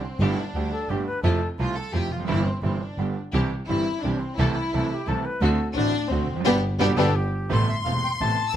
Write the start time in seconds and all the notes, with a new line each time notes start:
0.05 C4
0.20 G1 G2 D3 G3 A3 D4 E4 G4
0.40 D4
0.54 D2 D3 G3 A3 D4 G4
0.71 A4
0.89 G1 G2 D3 G3 A3 D4 G4
1.06 B4
1.22 F2 C3 F3 A3 E4 F4 A4
1.59 C2 C3 F3 A3 E4 F4
1.75 A4
1.93 F2 C3 F3 A3 E4 F4 G4
2.10 F1 F4
2.16 E2 F2
2.25 G1 F#2 C3 E3 C4 E4 G4
2.29 G2 G3
2.45 C4
2.63 G1 G2 C3 E3 G3 C4 E4 G4
2.81 D4
2.98 G1 G2 D3 G3 B3 D4 G4
3.33 C2 C3 E3 G3 C4 E4 G4
3.67 G1 G2 E3 G3 C4 E4 G4
4.01 C2 C3 E3 C4 D4 E4 G4
4.05 C2 G3 G4
4.17 C4
4.35 C2 C3 E3 C4 E4 A4
4.39 C2 A3 C4 A4
4.53 E4
4.73 C2 C3 E3 A3 C4 E4 A4
4.90 G4
5.06 C2 C3 E3 A3 C4 E4 A4
5.25 B4
5.41 D2 D3 A3 C4 D4 F#4 A4
5.74 A1 A2 D3 A3 C4 D4 F#4
6.09 D2 D3 A3 C4 D4 F#4
6.28 F1
6.33 E2 F2
6.41 F#2 B2 D3 G3
6.45 G1 B3 D4 G4
6.78 G1 B2 D3 G3 B3 D4 G4
6.96 G1 B2 D3 G3 B3 D4 G4 A4
7.15 G4
7.50 A1 A2 C3 A3 B3 C4 E4 A4 C6
7.69 E5
7.85 E1 E2 C3 A3 B3 C4 E4 A4 F5
8.04 G5
8.20 A1 A2 C3 A3 B3 C4 E4 A4 A5
8.48 E6